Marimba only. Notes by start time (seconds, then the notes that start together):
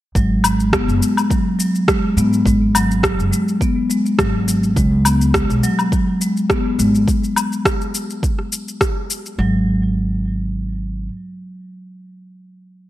0.15 F#3
0.44 G#3
0.73 B3
1.01 G#3
1.30 F#3
1.59 F#3
1.88 G#3
2.17 B3
2.46 G#3
2.75 F#3
3.32 G#3
3.61 B3
3.90 G#3
4.19 F#3
4.48 F#3
4.76 G#3
5.05 B3
5.35 G#3
5.64 F#3
5.92 F#3
6.21 G#3
6.50 B3
6.79 G#3
9.39 F#3